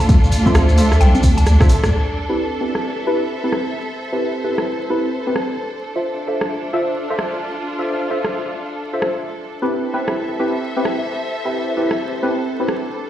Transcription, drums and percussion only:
0, 0, Header, 1, 2, 480
1, 0, Start_track
1, 0, Key_signature, 0, "minor"
1, 0, Tempo, 458015
1, 94, Time_signature, 4, 2, 24, 8
1, 13727, End_track
2, 0, Start_track
2, 0, Title_t, "Drums"
2, 1, Note_on_c, 9, 46, 62
2, 94, Note_on_c, 9, 36, 121
2, 94, Note_on_c, 9, 42, 68
2, 96, Note_on_c, 9, 70, 56
2, 106, Note_off_c, 9, 46, 0
2, 199, Note_off_c, 9, 36, 0
2, 199, Note_off_c, 9, 42, 0
2, 201, Note_off_c, 9, 70, 0
2, 250, Note_on_c, 9, 70, 37
2, 335, Note_off_c, 9, 70, 0
2, 335, Note_on_c, 9, 46, 112
2, 335, Note_on_c, 9, 70, 91
2, 439, Note_off_c, 9, 70, 0
2, 440, Note_off_c, 9, 46, 0
2, 481, Note_on_c, 9, 36, 57
2, 482, Note_on_c, 9, 70, 36
2, 483, Note_on_c, 9, 63, 76
2, 571, Note_off_c, 9, 70, 0
2, 571, Note_on_c, 9, 70, 53
2, 576, Note_on_c, 9, 37, 120
2, 576, Note_on_c, 9, 42, 66
2, 586, Note_off_c, 9, 36, 0
2, 588, Note_off_c, 9, 63, 0
2, 676, Note_off_c, 9, 70, 0
2, 680, Note_off_c, 9, 37, 0
2, 680, Note_off_c, 9, 42, 0
2, 720, Note_on_c, 9, 70, 35
2, 814, Note_on_c, 9, 46, 111
2, 816, Note_off_c, 9, 70, 0
2, 816, Note_on_c, 9, 70, 93
2, 918, Note_off_c, 9, 46, 0
2, 921, Note_off_c, 9, 70, 0
2, 962, Note_on_c, 9, 37, 67
2, 967, Note_on_c, 9, 70, 38
2, 1055, Note_on_c, 9, 42, 72
2, 1061, Note_off_c, 9, 70, 0
2, 1061, Note_on_c, 9, 70, 46
2, 1067, Note_off_c, 9, 37, 0
2, 1160, Note_off_c, 9, 42, 0
2, 1165, Note_off_c, 9, 70, 0
2, 1204, Note_on_c, 9, 42, 37
2, 1204, Note_on_c, 9, 63, 79
2, 1208, Note_on_c, 9, 70, 39
2, 1291, Note_off_c, 9, 70, 0
2, 1291, Note_on_c, 9, 70, 87
2, 1294, Note_on_c, 9, 36, 55
2, 1296, Note_on_c, 9, 46, 106
2, 1308, Note_off_c, 9, 42, 0
2, 1308, Note_off_c, 9, 63, 0
2, 1396, Note_off_c, 9, 70, 0
2, 1399, Note_off_c, 9, 36, 0
2, 1400, Note_off_c, 9, 46, 0
2, 1439, Note_on_c, 9, 70, 38
2, 1443, Note_on_c, 9, 42, 67
2, 1530, Note_off_c, 9, 70, 0
2, 1530, Note_on_c, 9, 70, 54
2, 1536, Note_off_c, 9, 42, 0
2, 1536, Note_on_c, 9, 37, 61
2, 1536, Note_on_c, 9, 42, 70
2, 1635, Note_off_c, 9, 70, 0
2, 1641, Note_off_c, 9, 37, 0
2, 1641, Note_off_c, 9, 42, 0
2, 1681, Note_on_c, 9, 36, 104
2, 1683, Note_on_c, 9, 37, 65
2, 1689, Note_on_c, 9, 70, 35
2, 1774, Note_off_c, 9, 70, 0
2, 1774, Note_on_c, 9, 70, 85
2, 1775, Note_on_c, 9, 46, 116
2, 1786, Note_off_c, 9, 36, 0
2, 1788, Note_off_c, 9, 37, 0
2, 1879, Note_off_c, 9, 70, 0
2, 1880, Note_off_c, 9, 46, 0
2, 1924, Note_on_c, 9, 37, 79
2, 1924, Note_on_c, 9, 42, 38
2, 1927, Note_on_c, 9, 70, 37
2, 2028, Note_off_c, 9, 37, 0
2, 2028, Note_off_c, 9, 42, 0
2, 2032, Note_off_c, 9, 70, 0
2, 2882, Note_on_c, 9, 37, 65
2, 2987, Note_off_c, 9, 37, 0
2, 3694, Note_on_c, 9, 37, 66
2, 3799, Note_off_c, 9, 37, 0
2, 4801, Note_on_c, 9, 37, 66
2, 4906, Note_off_c, 9, 37, 0
2, 5614, Note_on_c, 9, 37, 68
2, 5719, Note_off_c, 9, 37, 0
2, 6720, Note_on_c, 9, 37, 66
2, 6825, Note_off_c, 9, 37, 0
2, 7532, Note_on_c, 9, 37, 64
2, 7637, Note_off_c, 9, 37, 0
2, 8641, Note_on_c, 9, 37, 60
2, 8745, Note_off_c, 9, 37, 0
2, 9454, Note_on_c, 9, 37, 64
2, 9559, Note_off_c, 9, 37, 0
2, 10561, Note_on_c, 9, 37, 61
2, 10666, Note_off_c, 9, 37, 0
2, 11373, Note_on_c, 9, 37, 64
2, 11478, Note_off_c, 9, 37, 0
2, 12480, Note_on_c, 9, 37, 60
2, 12585, Note_off_c, 9, 37, 0
2, 13294, Note_on_c, 9, 37, 58
2, 13399, Note_off_c, 9, 37, 0
2, 13727, End_track
0, 0, End_of_file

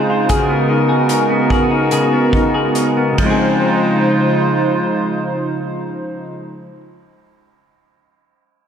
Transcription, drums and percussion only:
0, 0, Header, 1, 2, 480
1, 0, Start_track
1, 0, Key_signature, -5, "major"
1, 0, Tempo, 794702
1, 179, Time_signature, 4, 2, 24, 8
1, 661, Tempo, 829876
1, 1621, Tempo, 879765
1, 4853, End_track
2, 0, Start_track
2, 0, Title_t, "Drums"
2, 176, Note_on_c, 9, 42, 56
2, 179, Note_on_c, 9, 36, 88
2, 236, Note_off_c, 9, 42, 0
2, 240, Note_off_c, 9, 36, 0
2, 659, Note_on_c, 9, 42, 64
2, 717, Note_off_c, 9, 42, 0
2, 897, Note_on_c, 9, 36, 78
2, 955, Note_off_c, 9, 36, 0
2, 1133, Note_on_c, 9, 42, 52
2, 1191, Note_off_c, 9, 42, 0
2, 1376, Note_on_c, 9, 36, 75
2, 1433, Note_off_c, 9, 36, 0
2, 1619, Note_on_c, 9, 42, 56
2, 1674, Note_off_c, 9, 42, 0
2, 1854, Note_on_c, 9, 51, 62
2, 1856, Note_on_c, 9, 36, 82
2, 1909, Note_off_c, 9, 51, 0
2, 1910, Note_off_c, 9, 36, 0
2, 4853, End_track
0, 0, End_of_file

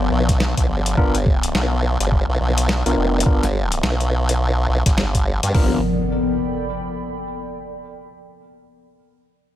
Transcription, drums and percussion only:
0, 0, Header, 1, 2, 480
1, 0, Start_track
1, 0, Tempo, 571429
1, 819, Time_signature, 4, 2, 24, 8
1, 8030, End_track
2, 0, Start_track
2, 0, Title_t, "Drums"
2, 241, Note_on_c, 9, 36, 103
2, 243, Note_on_c, 9, 38, 36
2, 243, Note_on_c, 9, 42, 62
2, 325, Note_off_c, 9, 36, 0
2, 327, Note_off_c, 9, 38, 0
2, 327, Note_off_c, 9, 42, 0
2, 338, Note_on_c, 9, 38, 119
2, 422, Note_off_c, 9, 38, 0
2, 481, Note_on_c, 9, 36, 57
2, 483, Note_on_c, 9, 42, 50
2, 565, Note_off_c, 9, 36, 0
2, 567, Note_off_c, 9, 42, 0
2, 723, Note_on_c, 9, 42, 62
2, 807, Note_off_c, 9, 42, 0
2, 818, Note_on_c, 9, 36, 109
2, 902, Note_off_c, 9, 36, 0
2, 963, Note_on_c, 9, 42, 53
2, 1047, Note_off_c, 9, 42, 0
2, 1058, Note_on_c, 9, 36, 102
2, 1142, Note_off_c, 9, 36, 0
2, 1204, Note_on_c, 9, 42, 66
2, 1288, Note_off_c, 9, 42, 0
2, 1300, Note_on_c, 9, 38, 112
2, 1384, Note_off_c, 9, 38, 0
2, 1684, Note_on_c, 9, 42, 65
2, 1768, Note_off_c, 9, 42, 0
2, 1778, Note_on_c, 9, 36, 59
2, 1862, Note_off_c, 9, 36, 0
2, 2164, Note_on_c, 9, 42, 62
2, 2248, Note_off_c, 9, 42, 0
2, 2260, Note_on_c, 9, 38, 114
2, 2344, Note_off_c, 9, 38, 0
2, 2403, Note_on_c, 9, 42, 52
2, 2487, Note_off_c, 9, 42, 0
2, 2691, Note_on_c, 9, 42, 65
2, 2738, Note_on_c, 9, 36, 115
2, 2775, Note_off_c, 9, 42, 0
2, 2822, Note_off_c, 9, 36, 0
2, 2884, Note_on_c, 9, 40, 40
2, 2884, Note_on_c, 9, 42, 55
2, 2968, Note_off_c, 9, 40, 0
2, 2968, Note_off_c, 9, 42, 0
2, 3123, Note_on_c, 9, 42, 68
2, 3207, Note_off_c, 9, 42, 0
2, 3220, Note_on_c, 9, 38, 113
2, 3304, Note_off_c, 9, 38, 0
2, 3364, Note_on_c, 9, 42, 38
2, 3448, Note_off_c, 9, 42, 0
2, 3604, Note_on_c, 9, 42, 68
2, 3688, Note_off_c, 9, 42, 0
2, 4082, Note_on_c, 9, 36, 103
2, 4083, Note_on_c, 9, 38, 36
2, 4083, Note_on_c, 9, 42, 65
2, 4166, Note_off_c, 9, 36, 0
2, 4167, Note_off_c, 9, 38, 0
2, 4167, Note_off_c, 9, 42, 0
2, 4180, Note_on_c, 9, 38, 116
2, 4264, Note_off_c, 9, 38, 0
2, 4322, Note_on_c, 9, 36, 60
2, 4324, Note_on_c, 9, 42, 52
2, 4406, Note_off_c, 9, 36, 0
2, 4408, Note_off_c, 9, 42, 0
2, 4562, Note_on_c, 9, 42, 64
2, 4646, Note_off_c, 9, 42, 0
2, 4658, Note_on_c, 9, 36, 105
2, 4658, Note_on_c, 9, 46, 88
2, 4742, Note_off_c, 9, 36, 0
2, 4742, Note_off_c, 9, 46, 0
2, 8030, End_track
0, 0, End_of_file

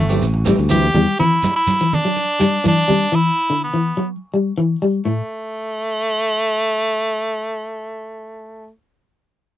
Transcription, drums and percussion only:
0, 0, Header, 1, 3, 480
1, 0, Start_track
1, 0, Tempo, 483092
1, 1185, Time_signature, 4, 2, 24, 8
1, 9515, End_track
2, 0, Start_track
2, 0, Title_t, "Shekere"
2, 92, Note_on_c, 9, 82, 67
2, 192, Note_off_c, 9, 82, 0
2, 217, Note_on_c, 9, 82, 68
2, 317, Note_off_c, 9, 82, 0
2, 453, Note_on_c, 9, 82, 93
2, 553, Note_off_c, 9, 82, 0
2, 578, Note_on_c, 9, 82, 30
2, 677, Note_off_c, 9, 82, 0
2, 691, Note_on_c, 9, 82, 92
2, 790, Note_off_c, 9, 82, 0
2, 937, Note_on_c, 9, 82, 30
2, 1036, Note_off_c, 9, 82, 0
2, 1182, Note_on_c, 9, 82, 71
2, 1282, Note_off_c, 9, 82, 0
2, 1416, Note_on_c, 9, 82, 88
2, 1516, Note_off_c, 9, 82, 0
2, 1548, Note_on_c, 9, 82, 31
2, 1648, Note_off_c, 9, 82, 0
2, 1656, Note_on_c, 9, 82, 89
2, 1755, Note_off_c, 9, 82, 0
2, 1785, Note_on_c, 9, 82, 75
2, 1884, Note_off_c, 9, 82, 0
2, 1910, Note_on_c, 9, 82, 31
2, 2009, Note_off_c, 9, 82, 0
2, 2026, Note_on_c, 9, 82, 73
2, 2126, Note_off_c, 9, 82, 0
2, 2145, Note_on_c, 9, 82, 74
2, 2244, Note_off_c, 9, 82, 0
2, 2386, Note_on_c, 9, 82, 96
2, 2485, Note_off_c, 9, 82, 0
2, 2515, Note_on_c, 9, 82, 30
2, 2614, Note_off_c, 9, 82, 0
2, 2634, Note_on_c, 9, 82, 95
2, 2733, Note_off_c, 9, 82, 0
2, 2870, Note_on_c, 9, 82, 29
2, 2969, Note_off_c, 9, 82, 0
2, 9515, End_track
3, 0, Start_track
3, 0, Title_t, "Drums"
3, 212, Note_on_c, 9, 63, 36
3, 311, Note_off_c, 9, 63, 0
3, 466, Note_on_c, 9, 63, 92
3, 566, Note_off_c, 9, 63, 0
3, 708, Note_on_c, 9, 63, 84
3, 807, Note_off_c, 9, 63, 0
3, 949, Note_on_c, 9, 64, 89
3, 1048, Note_off_c, 9, 64, 0
3, 1196, Note_on_c, 9, 63, 37
3, 1196, Note_on_c, 9, 64, 76
3, 1295, Note_off_c, 9, 63, 0
3, 1295, Note_off_c, 9, 64, 0
3, 1432, Note_on_c, 9, 63, 102
3, 1532, Note_off_c, 9, 63, 0
3, 1666, Note_on_c, 9, 63, 87
3, 1765, Note_off_c, 9, 63, 0
3, 1797, Note_on_c, 9, 63, 38
3, 1897, Note_off_c, 9, 63, 0
3, 1918, Note_on_c, 9, 64, 80
3, 2018, Note_off_c, 9, 64, 0
3, 2152, Note_on_c, 9, 63, 35
3, 2252, Note_off_c, 9, 63, 0
3, 2393, Note_on_c, 9, 63, 92
3, 2493, Note_off_c, 9, 63, 0
3, 2631, Note_on_c, 9, 63, 81
3, 2731, Note_off_c, 9, 63, 0
3, 2878, Note_on_c, 9, 64, 84
3, 2977, Note_off_c, 9, 64, 0
3, 9515, End_track
0, 0, End_of_file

